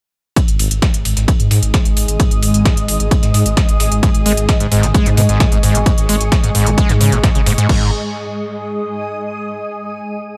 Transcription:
0.36 synth drone G#2 G#3, ambient pad G#3, kick, closed hi-hat, ride
0.48 detuned saw bass G#1, closed hi-hat
0.59 detuned saw bass G#1, ambient pad G#4, open hi-hat, ride
0.69 detuned saw bass G#1, ambient pad D#5, closed hi-hat
0.76 ambient pad D#6
0.82 kick, snare, closed hi-hat, ride
0.94 detuned saw bass G#1, closed hi-hat
1.05 detuned saw bass G#1, open hi-hat, ride
1.17 detuned saw bass G#1, snare, closed hi-hat
1.28 kick, closed hi-hat, ride
1.40 detuned saw bass G#2, closed hi-hat
1.51 detuned saw bass G#2, snare, open hi-hat, ride
1.63 detuned saw bass G#1, closed hi-hat
1.74 kick, snare, closed hi-hat, ride
1.85 detuned saw bass G#1, closed hi-hat
1.97 detuned saw bass G#1, open hi-hat, ride
2.08 detuned saw bass G#1, closed hi-hat
2.20 kick, closed hi-hat, ride
2.31 detuned saw bass G#1, closed hi-hat
2.43 detuned saw bass G#1, open hi-hat, ride
2.54 detuned saw bass G#1, closed hi-hat
2.65 kick, snare, closed hi-hat, ride
2.77 detuned saw bass G#1, closed hi-hat
2.88 detuned saw bass G#1, open hi-hat, ride
3.00 detuned saw bass G#1, closed hi-hat
3.11 kick, closed hi-hat, ride
3.23 detuned saw bass G#2, snare, closed hi-hat
3.34 detuned saw bass G#2, snare, open hi-hat, ride
3.46 detuned saw bass G#1, closed hi-hat
3.57 kick, snare, closed hi-hat, ride
3.69 detuned saw bass G#1, closed hi-hat
3.80 detuned saw bass G#1, snare, open hi-hat, ride
3.92 detuned saw bass G#1, closed hi-hat
4.03 acid bass G#2, kick, closed hi-hat, ride
4.14 detuned saw bass G#1, closed hi-hat
4.26 detuned saw bass G#1, acid bass G#3, open hi-hat, ride
4.37 detuned saw bass G#1, closed hi-hat
4.43 ambient pad C#6
4.49 kick, snare, closed hi-hat, ride
4.60 detuned saw bass G#1, acid bass G#2, closed hi-hat
4.72 detuned saw bass G#1, acid bass G#2, open hi-hat, ride
4.83 detuned saw bass G#1, acid bass B2, snare, closed hi-hat
4.94 acid bass G#3, kick, closed hi-hat, ride
5.06 detuned saw bass G#2, acid bass G#2, closed hi-hat
5.17 detuned saw bass G#2, acid bass B2, snare, open hi-hat, ride
5.29 detuned saw bass G#1, acid bass G#2, closed hi-hat
5.40 acid bass A2, kick, snare, closed hi-hat, ride
5.52 detuned saw bass G#1, acid bass G#2, closed hi-hat
5.63 detuned saw bass G#1, acid bass G#2, open hi-hat, ride
5.75 detuned saw bass G#1, acid bass B2, closed hi-hat
5.86 acid bass G#2, kick, closed hi-hat, ride
5.98 detuned saw bass G#1, closed hi-hat
6.09 detuned saw bass G#1, acid bass G#3, open hi-hat, ride
6.21 detuned saw bass G#1, closed hi-hat
6.32 kick, snare, closed hi-hat, ride
6.44 detuned saw bass G#1, acid bass G#2, closed hi-hat
6.55 detuned saw bass G#1, acid bass G#2, open hi-hat, ride
6.66 detuned saw bass G#1, acid bass B2, closed hi-hat
6.78 acid bass G#3, kick, closed hi-hat, ride
6.89 acid bass G#2, detuned saw bass G#2, snare, closed hi-hat
7.01 detuned saw bass G#2, acid bass C#3, snare, open hi-hat, ride
7.12 detuned saw bass G#1, acid bass G#2, closed hi-hat
7.24 acid bass G#2, kick, snare, closed hi-hat, ride
7.35 detuned saw bass G#1, acid bass C#3, closed hi-hat
7.46 detuned saw bass F#1, acid bass G#2, snare, open hi-hat, ride
7.58 detuned saw bass G#2, acid bass G#2, closed hi-hat
7.69 detuned saw bass G#1, acid bass G#2, ambient pad G#3, kick, crash
7.76 ambient pad G#4
7.83 ambient pad D#5
7.90 ambient pad D#6

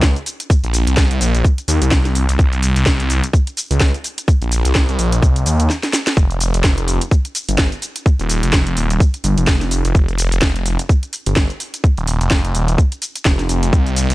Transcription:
Already playing: detuned saw bass C#2
0.02 kick, snare, shaker
0.16 closed hi-hat, shaker
0.26 open hi-hat, shaker
0.40 closed hi-hat, shaker
0.50 kick, shaker
0.64 detuned saw bass A#1, closed hi-hat, shaker
0.74 open hi-hat, shaker
0.87 detuned saw bass C2, closed hi-hat, shaker
0.97 kick, snare, shaker
1.11 detuned saw bass C2, closed hi-hat, shaker
1.21 detuned saw bass A#1, open hi-hat, shaker
1.35 closed hi-hat, shaker
1.44 kick, shaker
1.58 closed hi-hat, shaker
1.68 detuned saw bass D#2, open hi-hat, shaker
1.82 detuned saw bass C2, closed hi-hat, shaker
1.91 kick, snare, shaker
2.05 snare, closed hi-hat, shaker
2.15 open hi-hat, shaker
2.29 detuned saw bass C2, closed hi-hat, shaker
2.39 detuned saw bass C2, kick, shaker
2.53 closed hi-hat, shaker
2.63 open hi-hat, shaker
2.76 detuned saw bass C2, closed hi-hat, shaker
2.86 kick, snare, shaker
3.00 closed hi-hat, shaker
3.10 open hi-hat, shaker
3.24 closed hi-hat, shaker
3.33 kick, shaker
3.47 closed hi-hat, shaker
3.57 open hi-hat, shaker
3.71 detuned saw bass C#2, closed hi-hat, shaker
3.80 kick, snare, shaker
3.94 closed hi-hat, shaker
4.04 open hi-hat, shaker
4.18 closed hi-hat, shaker
4.28 kick, shaker
4.42 detuned saw bass A#1, closed hi-hat, shaker
4.52 open hi-hat, shaker
4.65 detuned saw bass C2, closed hi-hat, shaker
4.75 kick, snare, shaker
4.89 detuned saw bass C2, closed hi-hat, shaker
4.99 detuned saw bass A#1, open hi-hat, shaker
5.12 closed hi-hat, shaker
5.22 detuned saw bass C2, kick, shaker
5.36 closed hi-hat, shaker
5.46 detuned saw bass D#2, open hi-hat, shaker
5.60 closed hi-hat, shaker
5.70 snare, shaker
5.83 snare, closed hi-hat, shaker
5.93 snare, open hi-hat, shaker
6.07 snare, closed hi-hat, shaker
6.17 detuned saw bass F1, kick, shaker
6.31 closed hi-hat, shaker
6.41 open hi-hat, shaker
6.54 detuned saw bass F1, closed hi-hat, shaker
6.64 kick, snare, shaker
6.78 closed hi-hat, shaker
6.88 open hi-hat, shaker
7.01 closed hi-hat, shaker
7.11 kick, shaker
7.25 closed hi-hat, shaker
7.35 open hi-hat, shaker
7.49 detuned saw bass G1, closed hi-hat, shaker
7.58 kick, snare, shaker
7.72 closed hi-hat, shaker
7.82 open hi-hat, shaker
7.96 closed hi-hat, shaker
8.06 kick, shaker
8.19 detuned saw bass D#1, closed hi-hat, shaker
8.29 open hi-hat, shaker
8.43 detuned saw bass F1, closed hi-hat, shaker
8.53 kick, snare, shaker
8.67 detuned saw bass F1, closed hi-hat, shaker
8.77 detuned saw bass D#1, open hi-hat, shaker
8.90 closed hi-hat, shaker
9.00 kick, shaker
9.14 closed hi-hat, shaker
9.24 detuned saw bass G1, open hi-hat, shaker
9.38 detuned saw bass F1, closed hi-hat, shaker
9.47 kick, snare, shaker
9.61 snare, closed hi-hat, shaker
9.71 open hi-hat, shaker
9.85 detuned saw bass F1, closed hi-hat, shaker
9.95 detuned saw bass F1, kick, shaker
10.08 closed hi-hat, shaker
10.18 open hi-hat, shaker
10.32 detuned saw bass F1, closed hi-hat, shaker
10.42 kick, snare, shaker
10.56 closed hi-hat, shaker
10.66 open hi-hat, shaker
10.79 closed hi-hat, shaker
10.89 kick, shaker
11.03 closed hi-hat, shaker
11.13 open hi-hat, shaker
11.26 detuned saw bass G1, closed hi-hat, shaker
11.36 kick, snare, shaker
11.50 closed hi-hat, shaker
11.60 open hi-hat, shaker
11.74 closed hi-hat, shaker
11.84 kick, shaker
11.97 detuned saw bass D#1, closed hi-hat, shaker
12.07 open hi-hat, shaker
12.21 detuned saw bass F1, closed hi-hat, shaker
12.31 kick, snare, shaker
12.45 detuned saw bass F1, closed hi-hat, shaker
12.55 detuned saw bass D#1, open hi-hat, shaker
12.68 closed hi-hat, shaker
12.78 kick, shaker
12.92 closed hi-hat, shaker
13.02 open hi-hat, shaker
13.16 closed hi-hat, shaker
13.25 detuned saw bass F1, kick, snare, shaker
13.39 snare, closed hi-hat, shaker
13.49 detuned saw bass F1, open hi-hat, shaker
13.63 closed hi-hat, shaker
13.73 detuned saw bass C2, kick, shaker
13.86 closed hi-hat, shaker
13.96 open hi-hat, shaker
14.10 detuned saw bass C2, closed hi-hat, shaker

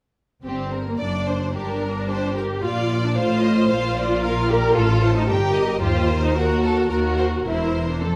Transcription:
0.45 double bass section G1, cello section G2, viola section C4, violin section G4
0.73 violin section A#4
0.89 viola section A#3
0.99 double bass section F#1, cello section F#2, viola section D4, violin section D5
1.28 violin section C5
1.54 double bass section G1, cello section G2, viola section D4, violin section G4 A#4
1.82 violin section A#4
2.09 violin section G4 C5
2.37 viola section G4, violin section A#4
2.63 double bass section A#1, cello section A#2, viola section F4, violin section D5 F5
2.91 violin section D5
3.05 viola section D4
3.16 double bass section A1, cello section A2, viola section F4, violin section C5 F5
3.44 violin section D#5
3.70 double bass section A#1, cello section A#2, viola section F4, violin section F5
3.98 violin section D5
4.24 violin section A#4 F5
4.49 violin section G4 D5, viola section A#4
4.76 double bass section A1, cello section A2, viola section F4, violin section A4
5.03 violin section C5
5.17 viola section D#4
5.28 double bass section G1, cello section G2, viola section G4, violin section A#4 G5
5.54 violin section D#5
5.81 cello section D#2, double bass section D#2, viola section F4, violin section G4 C5
6.10 violin section A#4
6.24 viola section D#4
6.36 violin section F#4 A#4, viola section F#4
6.63 violin section A4 A#4
6.90 cello section D#2, double bass section D#2, viola section F#4, violin section A#4
7.18 violin section C5
7.45 double bass section E1, cello section E2, viola section E4, violin section A#4 C5
7.90 viola section D4
8.03 double bass section F1, cello section F2, viola section C4, violin section A4

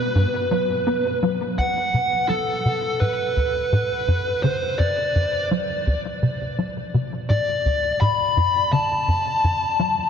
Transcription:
Already playing: lead electric guitar B4
0.15 analog synth bass G2
0.51 analog synth bass F#3
0.87 analog synth bass B3
1.23 analog synth bass F#3
1.58 analog synth bass D2, lead electric guitar F#5
1.94 analog synth bass C3
2.29 analog synth bass F#3, lead electric guitar A4
2.65 analog synth bass C3
3.00 analog synth bass A2, lead electric guitar B4
3.37 analog synth bass D2
3.72 analog synth bass A2
4.08 analog synth bass F#2
4.43 analog synth bass D3, lead electric guitar C5
4.79 analog synth bass F#2, lead electric guitar D5
5.15 analog synth bass F#2
5.51 analog synth bass F#3
5.87 analog synth bass D2
6.23 analog synth bass C3
6.58 analog synth bass F#3
6.94 analog synth bass C3
7.30 analog synth bass A2, lead electric guitar D5
7.66 analog synth bass D2
8.01 analog synth bass A2, lead electric guitar B5
8.37 analog synth bass F#2
8.72 analog synth bass D3, lead electric guitar A5
9.08 analog synth bass F#2
9.44 analog synth bass F#2
9.79 analog synth bass F#3

